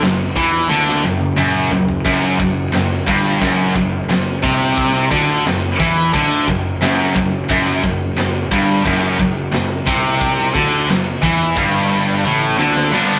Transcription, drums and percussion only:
0.02 snare, crash
0.36 kick
0.71 snare
0.89 snare
1.21 high tom
1.38 mid tom
1.71 floor tom
1.88 floor tom
2.06 kick, crash
2.40 kick
2.74 snare, crash
3.08 kick
3.42 kick, crash
3.76 kick
4.10 snare, crash
4.44 kick
4.78 kick, crash
5.12 kick
5.46 snare, crash
5.80 kick
6.14 kick, crash
6.48 kick
6.82 snare, crash
7.16 kick
7.50 kick, crash
7.84 kick
8.17 snare, crash
8.52 kick
8.86 kick, crash
9.19 kick
9.54 snare, crash
9.87 kick
10.21 kick, crash
10.55 kick
10.89 snare, crash
11.23 kick
11.57 kick, crash
12.25 high tom
12.59 snare
12.76 snare

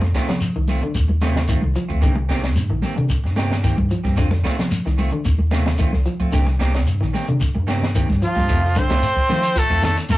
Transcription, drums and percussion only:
0.01 snare, high conga
0.14 kick, snare, closed hi-hat, shekere
0.29 snare, closed hi-hat
0.41 closed hi-hat, shekere
0.67 open hi-hat, high conga, shekere
0.82 closed hi-hat, low conga
0.94 kick, closed hi-hat, shekere
1.09 high conga
1.21 snare, closed hi-hat, high conga, shekere
1.36 snare, closed hi-hat, low conga
1.48 kick, closed hi-hat, shekere
1.61 high conga
1.75 closed hi-hat, shekere
1.90 kick, closed hi-hat
2.02 kick, closed hi-hat, low conga, shekere
2.15 high conga
2.29 kick, snare, closed hi-hat, shekere
2.44 snare, closed hi-hat
2.55 closed hi-hat, high conga, shekere
2.82 snare, open hi-hat, high conga, shekere
2.96 closed hi-hat, low conga
3.09 kick, closed hi-hat, shekere
3.25 snare
3.36 snare, closed hi-hat, high conga, shekere
3.50 snare, low conga
3.64 kick, closed hi-hat, shekere
3.78 kick, high conga
3.91 closed hi-hat, shekere
4.05 kick, snare, closed hi-hat
4.17 kick, closed hi-hat, low conga, shekere
4.31 snare, high conga
4.44 kick, snare, closed hi-hat, shekere
4.59 snare, closed hi-hat
4.71 closed hi-hat, high conga, shekere
4.86 snare
4.98 open hi-hat, high conga, shekere
5.12 closed hi-hat, low conga
5.25 kick, closed hi-hat, shekere
5.38 high conga
5.51 snare, closed hi-hat, high conga, shekere
5.65 snare, closed hi-hat, low conga
5.78 kick, closed hi-hat, shekere
5.93 snare, high conga
6.05 closed hi-hat, shekere
6.20 kick, closed hi-hat
6.32 kick, closed hi-hat, low conga, shekere
6.47 snare, high conga
6.60 kick, snare, closed hi-hat, shekere
6.74 snare, closed hi-hat
6.87 closed hi-hat, shekere
7.02 snare
7.14 snare, open hi-hat, high conga, shekere
7.28 closed hi-hat, low conga
7.40 kick, closed hi-hat, shekere
7.55 high conga
7.68 snare, closed hi-hat, high conga, shekere
7.82 snare, low conga
7.95 kick, closed hi-hat, shekere
8.09 kick, snare, high conga
8.22 closed hi-hat, shekere
8.37 kick, closed hi-hat
8.48 kick, closed hi-hat, high conga, shekere
8.64 snare
8.75 snare, closed hi-hat, high conga, shekere
8.89 kick, snare, closed hi-hat, shekere
9.02 closed hi-hat, high conga, shekere
9.17 kick
9.29 snare, open hi-hat, high conga, low conga, shekere
9.43 closed hi-hat, shekere
9.55 kick, closed hi-hat, high conga, shekere
9.70 kick
9.83 snare, closed hi-hat, high conga, low conga, shekere
9.97 snare, closed hi-hat, shekere
10.09 closed hi-hat, high conga, shekere

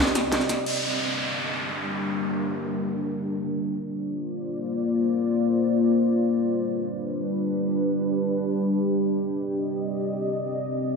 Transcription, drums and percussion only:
0.07 shaker
0.15 snare, closed hi-hat, ride, shaker
0.32 snare, closed hi-hat, ride
0.41 snare, shaker
0.49 snare, closed hi-hat, ride, shaker
0.66 crash

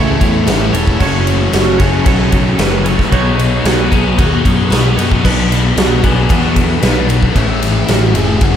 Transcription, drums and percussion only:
0.21 kick, ride
0.47 snare, ride
0.74 ride
0.87 kick
1.00 kick, crash
1.27 ride
1.53 snare, ride
1.80 kick, ride
2.06 kick, ride
2.32 kick, ride
2.59 snare, ride
2.86 ride
2.99 kick, snare
3.12 kick, ride
3.39 ride
3.65 snare, ride
3.92 kick, ride
4.19 kick, ride
4.45 kick, ride
4.72 snare, ride
4.99 ride
5.12 kick
5.25 kick, crash
5.52 snare, ride
5.77 snare, ride
6.04 kick, ride
6.30 kick, ride
6.56 kick, ride
6.82 snare, ride
7.10 ride
7.23 kick
7.36 kick, ride
7.62 snare, ride
7.88 snare, ride
8.15 ride
8.41 kick, ride

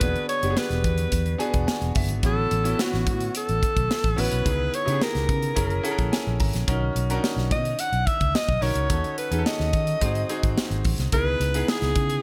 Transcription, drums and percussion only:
0.01 kick, closed hi-hat
0.16 closed hi-hat
0.29 closed hi-hat
0.43 closed hi-hat
0.57 snare
0.71 snare, closed hi-hat
0.84 kick, closed hi-hat
0.98 closed hi-hat
1.12 kick, closed hi-hat
1.26 closed hi-hat
1.40 closed hi-hat
1.54 kick, closed hi-hat
1.68 snare
1.82 closed hi-hat
1.95 kick, open hi-hat
2.09 closed hi-hat
2.23 kick, closed hi-hat
2.51 closed hi-hat
2.65 closed hi-hat
2.79 snare
2.94 snare
3.07 kick, closed hi-hat
3.21 closed hi-hat
3.35 closed hi-hat
3.49 closed hi-hat
3.63 kick, closed hi-hat
3.77 kick, closed hi-hat
3.91 snare
4.04 kick, closed hi-hat
4.18 open hi-hat
4.31 closed hi-hat
4.46 kick, closed hi-hat
4.74 closed hi-hat
4.88 closed hi-hat
5.02 snare
5.15 snare, closed hi-hat
5.29 kick, closed hi-hat
5.43 closed hi-hat
5.56 kick, closed hi-hat
5.70 closed hi-hat
5.85 closed hi-hat
5.98 kick, closed hi-hat
6.13 snare
6.40 kick, open hi-hat
6.53 snare, closed hi-hat
6.68 kick, closed hi-hat
6.96 closed hi-hat
7.10 closed hi-hat
7.24 snare
7.38 snare
7.51 kick, closed hi-hat
7.65 closed hi-hat
7.79 closed hi-hat
7.93 closed hi-hat
8.07 kick, closed hi-hat
8.21 kick, closed hi-hat
8.35 snare
8.49 kick
8.62 open hi-hat
8.75 closed hi-hat
8.90 kick, closed hi-hat
9.04 closed hi-hat
9.18 closed hi-hat
9.32 closed hi-hat
9.46 snare
9.60 snare
9.73 kick, closed hi-hat
9.87 closed hi-hat
10.01 kick, closed hi-hat
10.15 closed hi-hat
10.29 closed hi-hat
10.43 kick, closed hi-hat
10.58 snare
10.71 closed hi-hat
10.85 kick, open hi-hat
10.98 snare, closed hi-hat
11.12 kick, closed hi-hat
11.41 closed hi-hat
11.54 closed hi-hat
11.68 snare
11.82 snare, closed hi-hat
11.96 kick, closed hi-hat
12.10 closed hi-hat

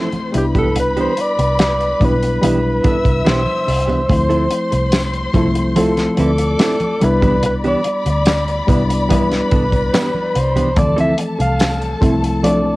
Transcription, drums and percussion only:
0.12 closed hi-hat, high conga
0.34 closed hi-hat, muted conga
0.55 kick, closed hi-hat, high conga, low conga
0.76 closed hi-hat, muted conga, low conga
0.97 closed hi-hat
1.17 closed hi-hat, muted conga
1.39 closed hi-hat
1.59 snare, closed hi-hat
1.80 closed hi-hat
2.01 kick, closed hi-hat, muted conga, low conga
2.23 closed hi-hat
2.43 closed hi-hat, muted conga, high conga
2.84 kick, closed hi-hat, muted conga
3.05 kick, closed hi-hat
3.26 snare, closed hi-hat, muted conga
3.46 high conga
3.67 open hi-hat, muted conga
3.88 closed hi-hat, high conga, low conga
4.09 kick, closed hi-hat, low conga
4.30 closed hi-hat
4.51 closed hi-hat, muted conga
4.72 closed hi-hat
4.92 snare, closed hi-hat, tambourine, muted conga
5.14 closed hi-hat
5.34 kick, closed hi-hat, muted conga, low conga
5.55 closed hi-hat
5.76 closed hi-hat, muted conga, high conga
5.97 snare, closed hi-hat
6.17 closed hi-hat, muted conga
6.38 closed hi-hat
6.59 snare, closed hi-hat, tambourine
6.80 closed hi-hat, high conga
7.01 closed hi-hat
7.22 kick, closed hi-hat, high conga, low conga
7.43 closed hi-hat, muted conga, low conga
7.64 closed hi-hat
7.84 closed hi-hat, muted conga
8.06 closed hi-hat
8.25 snare, closed hi-hat, tambourine
8.48 closed hi-hat
8.68 kick, closed hi-hat, muted conga, low conga
8.90 closed hi-hat
9.10 kick, closed hi-hat, muted conga, high conga
9.31 snare, closed hi-hat
9.51 kick, closed hi-hat, muted conga
9.72 kick, closed hi-hat
9.94 snare, closed hi-hat, tambourine, muted conga
10.14 high conga
10.35 closed hi-hat, muted conga
10.56 closed hi-hat, high conga, low conga
10.76 kick, closed hi-hat, muted conga, low conga
10.98 closed hi-hat
11.18 closed hi-hat, muted conga
11.40 closed hi-hat
11.59 snare, closed hi-hat, tambourine
11.82 closed hi-hat
12.01 kick, closed hi-hat, muted conga, low conga
12.24 closed hi-hat
12.43 closed hi-hat, high conga

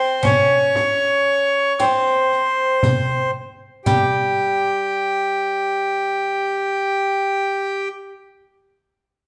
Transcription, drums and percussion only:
0.23 riq, darbuka dum, frame drum
0.75 riq, darbuka tek, frame drum
1.79 riq, darbuka tek, frame drum
2.07 riq
2.30 riq, darbuka ka
2.83 riq, frame drum, darbuka dum
3.86 riq, frame drum, darbuka dum

